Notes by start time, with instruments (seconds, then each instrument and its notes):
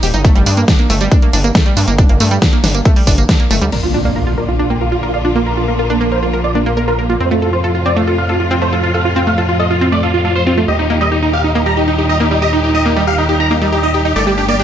0.03 analog synth bass D#1, synth arpeggio sound G4, open hi-hat, tambourine
0.14 analog synth bass G1, synth arpeggio sound D#4, closed hi-hat, tambourine
0.25 synth arpeggio sound A3, kick, closed hi-hat, tambourine
0.35 analog synth bass G1, synth arpeggio sound G3, closed hi-hat
0.46 analog synth bass G2, synth arpeggio sound D4, open hi-hat, tambourine
0.57 synth arpeggio sound A#3, closed hi-hat, tambourine
0.68 synth arpeggio sound D4, kick, snare, closed hi-hat, tambourine
0.79 synth arpeggio sound A#3, closed hi-hat
0.90 analog synth bass G1, synth arpeggio sound A3, open hi-hat, tambourine
1.01 synth arpeggio sound G3, closed hi-hat, tambourine
1.12 synth arpeggio sound D4, kick, closed hi-hat, tambourine
1.22 synth arpeggio sound A#3, closed hi-hat
1.33 analog synth bass G1, synth arpeggio sound D4, open hi-hat, tambourine
1.44 synth arpeggio sound A#3, closed hi-hat, tambourine
1.55 synth arpeggio sound A3, kick, snare, closed hi-hat, tambourine
1.66 synth arpeggio sound G3, closed hi-hat
1.77 analog synth bass G2, synth arpeggio sound D4, open hi-hat, tambourine
1.88 analog synth bass G1, synth arpeggio sound A#3, closed hi-hat, tambourine
1.98 synth arpeggio sound D4, kick, closed hi-hat, tambourine
2.09 analog synth bass G1, synth arpeggio sound A#3, closed hi-hat
2.20 analog synth bass G2, synth arpeggio sound A3, open hi-hat, tambourine
2.31 synth arpeggio sound G3, closed hi-hat, tambourine
2.42 synth arpeggio sound D4, kick, snare, closed hi-hat, tambourine
2.53 synth arpeggio sound A#3, closed hi-hat
2.64 analog synth bass G1, synth arpeggio sound D4, snare, open hi-hat, tambourine
2.75 synth arpeggio sound A#3, closed hi-hat, tambourine
2.85 synth arpeggio sound A3, kick, closed hi-hat, tambourine
2.96 synth arpeggio sound G3, open hi-hat
3.07 analog synth bass G1, synth arpeggio sound D4, kick, open hi-hat, tambourine
3.18 synth arpeggio sound A#3, closed hi-hat, tambourine
3.29 synth arpeggio sound D4, kick, snare, closed hi-hat, tambourine
3.40 synth arpeggio sound A#3, closed hi-hat
3.51 analog synth bass G1, synth arpeggio sound A3, open hi-hat, tambourine
3.62 analog synth bass D2, synth arpeggio sound G3, closed hi-hat, tambourine
3.72 analog synth bass A#1, string section A#2 D3 F3 D4 F4, synth arpeggio sound A#4, supersaw synth D5, crash, impact
3.83 supersaw synth F4, synth arpeggio sound F4
3.94 synth arpeggio sound D4, supersaw synth F4
4.05 synth arpeggio sound A#3, supersaw synth D5
4.16 supersaw synth F4, synth arpeggio sound A#4
4.27 supersaw synth F4, synth arpeggio sound F4
4.37 synth arpeggio sound A#4, supersaw synth D5
4.48 supersaw synth F4, synth arpeggio sound F4
4.59 synth arpeggio sound D4, supersaw synth F4
4.70 synth arpeggio sound A#3, supersaw synth G5
4.81 supersaw synth F4, synth arpeggio sound A#4
4.92 synth arpeggio sound F4, supersaw synth F4
5.03 supersaw synth F4, synth arpeggio sound A#4
5.14 synth arpeggio sound F4, supersaw synth D5
5.25 synth arpeggio sound D4, supersaw synth F4
5.35 synth arpeggio sound A#3, supersaw synth F4
5.46 supersaw synth A#4, synth arpeggio sound A#4
5.57 supersaw synth A#3, synth arpeggio sound F4
5.68 supersaw synth A#3, synth arpeggio sound A#4
5.79 synth arpeggio sound F4, supersaw synth A#4
5.90 supersaw synth A#3, synth arpeggio sound D4
6.01 synth arpeggio sound A#3, supersaw synth A#3
6.12 synth arpeggio sound A#4, supersaw synth C5
6.23 supersaw synth A#3, synth arpeggio sound F4
6.33 supersaw synth A#3, synth arpeggio sound A#4
6.44 synth arpeggio sound F4, supersaw synth D5
6.55 supersaw synth A#3, synth arpeggio sound D4
6.66 supersaw synth A#3, synth arpeggio sound A#3
6.77 supersaw synth A#3, synth arpeggio sound A#4
6.88 synth arpeggio sound F4, supersaw synth A#4
6.99 supersaw synth A#3, synth arpeggio sound A#4
7.09 supersaw synth A#3, synth arpeggio sound F4
7.20 analog synth bass F2, string section A2 C3 C4 F4, synth arpeggio sound C4, supersaw synth C5
7.31 synth arpeggio sound A3, supersaw synth F4
7.42 supersaw synth F4, synth arpeggio sound A4
7.53 synth arpeggio sound F4, supersaw synth C5
7.64 supersaw synth F4, synth arpeggio sound A4
7.75 supersaw synth F4, synth arpeggio sound F4
7.86 synth arpeggio sound C4, supersaw synth D5
7.96 synth arpeggio sound A3, supersaw synth F4
8.07 supersaw synth F4, synth arpeggio sound A4
8.18 synth arpeggio sound F4, supersaw synth F5
8.29 supersaw synth F4, synth arpeggio sound A4
8.40 synth arpeggio sound F4, supersaw synth F4
8.51 synth arpeggio sound C4, supersaw synth F4
8.62 synth arpeggio sound A3, supersaw synth C5
8.73 supersaw synth F4, synth arpeggio sound A4
8.83 synth arpeggio sound F4, supersaw synth F4
8.94 synth arpeggio sound A4, supersaw synth F5
9.05 synth arpeggio sound F4, supersaw synth F4
9.16 synth arpeggio sound C4, supersaw synth F4
9.27 synth arpeggio sound A3, supersaw synth F5
9.38 supersaw synth F4, synth arpeggio sound A4
9.49 synth arpeggio sound F4, supersaw synth F4
9.60 synth arpeggio sound A4, supersaw synth D#5
9.70 synth arpeggio sound F4, supersaw synth F4
9.81 synth arpeggio sound C4, supersaw synth F4
9.92 synth arpeggio sound A3, supersaw synth D5
10.03 supersaw synth F4, synth arpeggio sound A4
10.14 supersaw synth F4, synth arpeggio sound F4
10.25 supersaw synth F4, synth arpeggio sound A4
10.35 synth arpeggio sound F4, supersaw synth C5
10.46 synth arpeggio sound C4, supersaw synth F4
10.57 synth arpeggio sound A3, supersaw synth F4
10.68 analog synth bass D#2, string section A#2 D#3 G3 D#4 G4, synth arpeggio sound G4, supersaw synth D#5
10.79 supersaw synth D#4, synth arpeggio sound D#4
10.90 synth arpeggio sound A#3, supersaw synth D#4
11.01 synth arpeggio sound G3, supersaw synth D#5
11.12 supersaw synth D#4, synth arpeggio sound G4
11.22 supersaw synth D#4, synth arpeggio sound D#4
11.33 synth arpeggio sound G4, supersaw synth F5
11.44 supersaw synth D#4, synth arpeggio sound D#4
11.55 synth arpeggio sound A#3, supersaw synth D#4
11.66 synth arpeggio sound G3, supersaw synth A#5
11.77 supersaw synth D#4, synth arpeggio sound G4
11.88 supersaw synth D#4, synth arpeggio sound D#4
11.98 supersaw synth D#4, synth arpeggio sound G4
12.09 synth arpeggio sound D#4, supersaw synth D#5
12.20 synth arpeggio sound A#3, supersaw synth D#4
12.31 synth arpeggio sound G3, supersaw synth D#4
12.42 synth arpeggio sound G4, supersaw synth D#5
12.53 synth arpeggio sound D#4, supersaw synth D#4
12.64 supersaw synth D#4, synth arpeggio sound G4
12.75 synth arpeggio sound D#4, supersaw synth D#5
12.85 synth arpeggio sound A#3, supersaw synth D#4
12.96 synth arpeggio sound G3, supersaw synth D#4
13.07 synth arpeggio sound G4, supersaw synth F5
13.18 synth arpeggio sound D#4, supersaw synth D#4
13.29 supersaw synth D#4, synth arpeggio sound G4
13.40 synth arpeggio sound D#4, supersaw synth A#5
13.51 synth arpeggio sound A#3, supersaw synth D#4
13.62 synth arpeggio sound G3, supersaw synth D#4
13.72 supersaw synth D#4, synth arpeggio sound G4
13.83 synth arpeggio sound D#4, supersaw synth D#5
13.94 supersaw synth D#4, synth arpeggio sound G4
14.05 synth arpeggio sound D#4, supersaw synth D#4
14.16 analog synth bass G1, string section D3 A3 A#3, synth arpeggio sound A3, supersaw synth D5, riser
14.27 synth arpeggio sound G3, supersaw synth G4
14.38 synth arpeggio sound D4, supersaw synth G4
14.48 synth arpeggio sound A#3, supersaw synth D5
14.59 synth arpeggio sound D4, supersaw synth G4